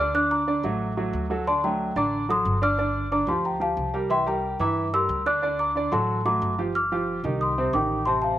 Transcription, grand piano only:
0.00 0.12 D3 loud
0.00 0.12 D4 medium
0.00 0.12 D5 medium
0.14 0.41 D3 medium
0.14 0.42 D4 medium
0.14 0.42 D5 medium
0.47 0.61 D3 medium
0.47 0.61 D4 medium
0.47 0.61 D5 medium
0.64 0.91 F#3 medium
0.64 0.91 A3 medium
0.64 0.91 F#4 medium
0.97 1.24 F#3 medium
0.97 1.25 A3 medium
0.97 1.24 F#4 medium
1.30 1.43 F#3 medium
1.30 1.44 F#4 medium
1.30 1.44 A4 medium
1.47 1.60 D3 medium
1.47 1.60 D4 medium
1.47 1.61 D5 medium
1.64 1.91 F#3 medium
1.64 1.91 A3 medium
1.64 1.91 D4 medium
1.96 2.23 D3 medium
1.96 2.23 D4 medium
1.96 2.23 D5 medium
2.29 2.56 F#3 medium
2.29 2.56 F#4 medium
2.29 2.56 A4 medium
2.62 2.75 D3 medium
2.62 2.75 D4 medium
2.62 2.76 D5 medium
2.78 3.05 D3 medium
2.78 3.06 D4 medium
2.78 3.06 D5 medium
3.11 3.25 D3 medium
3.11 3.25 D4 medium
3.11 3.26 D5 medium
3.28 3.55 F3 medium
3.28 3.55 F4 medium
3.28 3.55 G4 medium
3.60 3.87 F3 medium
3.60 3.88 F4 medium
3.60 3.88 G4 medium
3.94 4.08 G3 medium
3.94 4.07 G4 medium
3.94 4.08 A#4 medium
4.10 4.24 E3 medium
4.10 4.24 E4 medium
4.10 4.24 E5 medium
4.26 4.54 G3 medium
4.26 4.54 G4 medium
4.26 4.54 A#4 medium
4.60 4.87 E3 loud
4.60 4.87 E4 medium
4.60 4.87 E5 medium
4.93 5.20 G3 medium
4.93 5.20 G4 medium
4.93 5.21 A#4 medium
5.26 5.40 D3 medium
5.26 5.40 D4 medium
5.26 5.40 D5 medium
5.42 5.70 D3 medium
5.42 5.70 D4 medium
5.42 5.70 D5 medium
5.76 5.89 D3 medium
5.76 5.90 D4 medium
5.76 5.90 D5 medium
5.92 6.19 F#3 medium
5.92 6.19 F#4 medium
5.92 6.20 A4 medium
6.25 6.52 F#3 medium
6.25 6.52 A3 medium
6.25 6.52 F#4 medium
6.59 6.72 F3 medium
6.59 6.72 F4 medium
6.59 6.72 G4 medium
6.92 7.19 F3 medium
6.92 7.19 F4 medium
6.92 7.19 G4 medium
7.24 7.51 D#3 medium
7.24 7.52 D#4 medium
7.24 7.52 G4 medium
7.58 7.71 C3 medium
7.58 7.71 C4 medium
7.58 7.71 C5 medium
7.74 8.01 D#3 medium
7.74 8.01 D#4 medium
7.74 8.01 G4 medium
8.07 8.34 C3 medium
8.07 8.34 C4 medium
8.07 8.34 C5 medium

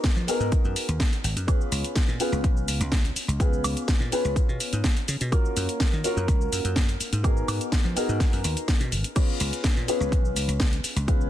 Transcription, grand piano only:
0.00 0.25 B3 medium
0.00 0.25 D#4 medium
0.00 0.25 F#4 medium
0.00 0.25 G#4 medium
0.00 0.26 A#4 loud
0.27 1.45 B3 loud
0.27 1.45 D#4 medium
0.27 1.45 F#4 medium
0.27 1.45 G#4 medium
0.27 1.46 A#4 loud
1.47 2.17 B3 medium
1.47 2.17 C#4 medium
1.47 2.17 F4 medium
1.47 2.18 G#4 medium
1.47 2.18 B4 loud
2.19 3.37 B3 loud
2.19 3.37 C#4 medium
2.19 3.37 F4 medium
2.19 3.38 G#4 medium
2.19 3.38 B4 loud
3.40 4.09 B3 loud
3.40 4.09 C#4 medium
3.40 4.09 F4 medium
3.40 4.10 G#4 medium
3.40 4.10 B4 loud
4.12 5.29 B3 loud
4.12 5.29 C#4 medium
4.12 5.29 F4 medium
4.12 5.30 G#4 medium
4.12 5.30 B4 loud
5.32 6.01 A#3 loud
5.32 6.01 C#4 medium
5.32 6.01 F4 medium
5.32 6.02 F#4 medium
5.32 6.02 A#4 loud
6.04 7.21 A#3 loud
6.04 7.21 C#4 medium
6.04 7.22 F4 medium
6.04 7.22 F#4 medium
6.04 7.22 A#4 loud
7.23 7.93 B3 medium
7.23 7.93 D#4 medium
7.23 7.93 F#4 medium
7.23 7.94 G#4 medium
7.23 7.94 A#4 loud
7.95 9.13 B3 medium
7.95 9.13 D#4 medium
7.95 9.13 F#4 medium
7.95 9.13 G#4 medium
7.95 9.14 A#4 loud
9.15 9.85 B3 medium
9.15 9.85 C#4 medium
9.15 9.85 F4 medium
9.15 9.86 G#4 medium
9.15 9.86 B4 loud
9.87 11.05 B3 medium
9.87 11.05 C#4 medium
9.87 11.05 F4 medium
9.87 11.06 G#4 medium
9.87 11.06 B4 loud
11.07 11.30 B3 medium
11.07 11.30 C#4 medium
11.07 11.30 F4 medium
11.07 11.30 G#4 medium
11.07 11.30 B4 loud

